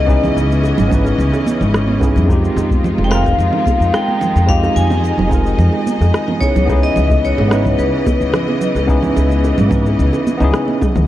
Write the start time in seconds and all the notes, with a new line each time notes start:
Already playing: C#2 C#3 E3 B3 C#4 D#4 E4 B4 D#5
0.07 B3 C#4 D#4 E4 G#4, kick, shaker
0.23 low conga, shaker
0.36 C#2, high bongo, shaker
0.50 high conga, shaker
0.63 high bongo, shaker
0.78 G#1, low conga, shaker
0.88 B3 C#4 D#4, kick, low conga
0.92 E4 B4, shaker
1.05 high bongo, shaker
1.18 C#2, shaker
1.33 high bongo, shaker
1.46 high conga, shaker
1.61 G#1, low conga, shaker
1.74 cross-stick, high bongo, shaker
1.87 high conga
2.00 B3 C#4 D#4 E4 G#4, kick, high bongo, shaker
2.16 F2, low conga, shaker
2.25 D#3 G#3 C4 D#4 F4, kick
2.30 F4 G4, high bongo, shaker
2.44 shaker
2.56 F2, high bongo, shaker
2.71 kick, high conga, shaker
2.84 low conga, shaker
2.98 F1, high bongo
3.04 G#3 G5
3.09 C4 D#4 F4 F5, cross-stick, shaker
3.15 A#4
3.26 kick, high bongo, shaker
3.39 F2, shaker
3.53 low conga
3.66 kick, high bongo, high conga, shaker
3.80 F2, shaker
3.94 G5, cross-stick, high bongo, shaker
4.09 high conga
4.21 low conga, shaker
4.36 F2, high bongo, shaker
4.47 G#3 C4 D#4 F4 G4 D#5 F5, kick, shaker
4.64 high bongo, shaker
4.76 F2 G#5, shaker
4.90 high conga, low conga, shaker
5.04 high bongo, shaker
5.18 F1, low conga
5.28 G#3 C4 D#4, kick, high bongo
5.32 F4 A#4, shaker
5.46 shaker
5.59 F2, low conga, shaker
5.73 high bongo
5.87 high conga, shaker
6.01 F2, high bongo, shaker
6.14 cross-stick, shaker
6.28 high conga, low conga
6.40 C#3 E3 B3 C#4 D#4 E4 G#4 C#5, kick, high bongo, shaker
6.56 C#2, low conga, shaker
6.65 B3 C#4 D#4, kick
6.69 E4 G#4, high bongo, shaker
6.83 D#5, shaker
6.96 C#2, low conga, shaker
7.10 kick, high bongo, high conga, shaker
7.25 C#5, shaker
7.38 G#1, high bongo
7.48 B3 C#4 D#4, cross-stick
7.52 E4 B4, shaker
7.65 kick, low conga, shaker
7.78 C#2 B4, high bongo, shaker
8.06 kick, high bongo, high conga, shaker
8.21 C#2, shaker
8.33 cross-stick, low conga, shaker
8.48 high bongo, high conga
8.61 low conga, shaker
8.75 C#2, high bongo, shaker
8.87 B3 C#4 D#4 E4 G#4, kick, shaker
9.02 low conga, shaker
9.16 C#2, high bongo, shaker
9.30 high conga, shaker
9.44 high bongo, shaker
9.58 G#1, low conga, shaker
9.68 B3 C#4 D#4, kick, low conga, shaker
9.74 E4 B4
9.86 high bongo, shaker
9.99 C#2, shaker
10.13 high bongo, shaker
10.27 high conga, shaker
10.37 C#2 B3 C#4 D#4, low conga, shaker
10.42 E4 G#4
10.54 cross-stick, high bongo, shaker
10.68 high conga
10.81 kick, high tom, high bongo, shaker
10.95 C#2, mid tom, low conga, shaker